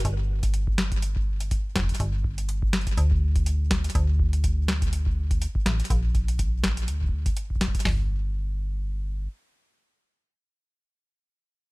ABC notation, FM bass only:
X:1
M:4/4
L:1/8
Q:"Swing 16ths" 1/4=123
K:Gm
V:1 name="FM bass" clef=bass
G,,,6 z F,,, | G,,,4 D,,4 | D,,6 z A,,, | B,,,4 D,,2 z2 |
G,,,6 z2 | z8 |]